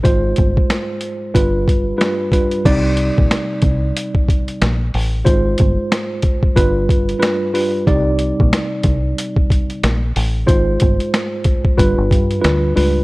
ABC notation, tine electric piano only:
X:1
M:4/4
L:1/8
Q:"Swing 16ths" 1/4=92
K:Cm
V:1 name="Tine electric piano"
[A,,A,Fc]4 [G,,G,F=B]2 [G,,G,FB] [G,,G,FB] | [C,G,Ed]6 z2 | [A,,A,Fc]4 [G,,G,F=B]2 [G,,G,FB] [G,,G,FB] | [C,G,Ed]6 z2 |
[A,,A,Fc]4 [G,,G,F=B]2 [G,,G,FB] [G,,G,FB] |]